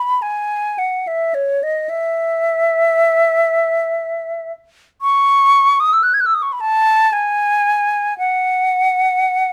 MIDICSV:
0, 0, Header, 1, 2, 480
1, 0, Start_track
1, 0, Key_signature, 4, "major"
1, 0, Tempo, 1127820
1, 813, Time_signature, 3, 2, 24, 8
1, 813, Tempo, 1084991
1, 1293, Tempo, 1020408
1, 2253, Tempo, 1071429
1, 3213, Tempo, 1027397
1, 4310, End_track
2, 0, Start_track
2, 0, Title_t, "Flute"
2, 0, Program_c, 0, 73
2, 0, Note_on_c, 0, 83, 77
2, 94, Note_on_c, 0, 80, 71
2, 101, Note_off_c, 0, 83, 0
2, 334, Note_on_c, 0, 78, 66
2, 340, Note_off_c, 0, 80, 0
2, 457, Note_on_c, 0, 76, 61
2, 463, Note_off_c, 0, 78, 0
2, 572, Note_on_c, 0, 73, 67
2, 579, Note_off_c, 0, 76, 0
2, 694, Note_on_c, 0, 75, 64
2, 700, Note_off_c, 0, 73, 0
2, 806, Note_on_c, 0, 76, 76
2, 812, Note_off_c, 0, 75, 0
2, 2009, Note_off_c, 0, 76, 0
2, 2244, Note_on_c, 0, 85, 89
2, 2596, Note_on_c, 0, 87, 76
2, 2602, Note_off_c, 0, 85, 0
2, 2653, Note_on_c, 0, 88, 57
2, 2660, Note_off_c, 0, 87, 0
2, 2698, Note_on_c, 0, 90, 62
2, 2705, Note_off_c, 0, 88, 0
2, 2747, Note_on_c, 0, 92, 61
2, 2754, Note_off_c, 0, 90, 0
2, 2776, Note_on_c, 0, 90, 58
2, 2783, Note_off_c, 0, 92, 0
2, 2801, Note_on_c, 0, 88, 64
2, 2808, Note_off_c, 0, 90, 0
2, 2839, Note_on_c, 0, 87, 61
2, 2846, Note_off_c, 0, 88, 0
2, 2875, Note_on_c, 0, 85, 58
2, 2881, Note_off_c, 0, 87, 0
2, 2920, Note_on_c, 0, 83, 65
2, 2927, Note_off_c, 0, 85, 0
2, 2956, Note_on_c, 0, 81, 89
2, 2963, Note_off_c, 0, 83, 0
2, 3191, Note_on_c, 0, 80, 86
2, 3197, Note_off_c, 0, 81, 0
2, 3679, Note_off_c, 0, 80, 0
2, 3682, Note_on_c, 0, 78, 87
2, 4310, Note_off_c, 0, 78, 0
2, 4310, End_track
0, 0, End_of_file